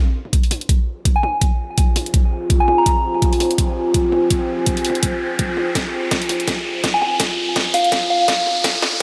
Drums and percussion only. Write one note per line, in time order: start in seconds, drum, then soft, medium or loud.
0.25 mid tom soft
0.33 kick medium
0.33 closed hi-hat medium
0.43 open hi-hat soft
0.51 mid tom medium
0.51 open hi-hat medium
0.61 closed hi-hat soft
0.69 kick medium
0.69 closed hi-hat medium
1.05 kick medium
1.05 closed hi-hat medium
1.23 mid tom medium
1.41 kick loud
1.41 closed hi-hat medium
1.78 kick medium
1.78 closed hi-hat medium
1.96 mid tom medium
1.96 open hi-hat medium
2.06 closed hi-hat soft
2.14 kick loud
2.14 closed hi-hat medium
2.50 kick loud
2.50 closed hi-hat medium
2.68 mid tom medium
2.86 kick loud
2.86 closed hi-hat medium
3.14 mid tom soft
3.22 kick medium
3.22 closed hi-hat medium
3.33 open hi-hat soft
3.40 mid tom medium
3.40 open hi-hat medium
3.51 closed hi-hat soft
3.58 kick loud
3.58 closed hi-hat medium
3.94 kick medium
3.94 closed hi-hat medium
4.12 mid tom medium
4.30 kick loud
4.30 closed hi-hat medium
4.59 mid tom soft
4.66 kick medium
4.66 closed hi-hat medium
4.77 open hi-hat soft
4.85 open hi-hat medium
4.90 mid tom medium
4.95 closed hi-hat soft
5.03 kick loud
5.03 closed hi-hat medium
5.39 kick medium
5.39 closed hi-hat medium
5.57 mid tom medium
5.75 kick loud
5.75 snare soft
5.75 closed hi-hat medium
6.11 kick medium
6.11 snare soft
6.11 closed hi-hat medium
6.22 open hi-hat soft
6.29 mid tom medium
6.29 open hi-hat medium
6.40 closed hi-hat soft
6.48 kick loud
6.48 snare medium
6.48 closed hi-hat medium
6.84 kick loud
6.84 snare medium
6.84 closed hi-hat medium
7.02 mid tom medium
7.20 kick loud
7.20 snare medium
7.20 closed hi-hat medium
7.56 kick loud
7.56 snare medium
7.56 closed hi-hat medium
7.74 mid tom medium
7.74 open hi-hat medium
7.84 closed hi-hat soft
7.92 kick medium
7.92 snare medium
7.92 closed hi-hat medium
8.28 kick loud
8.28 snare medium
8.28 closed hi-hat medium
8.46 mid tom medium
8.64 kick loud
8.64 snare medium
8.64 closed hi-hat medium
8.82 snare medium
8.93 mid tom soft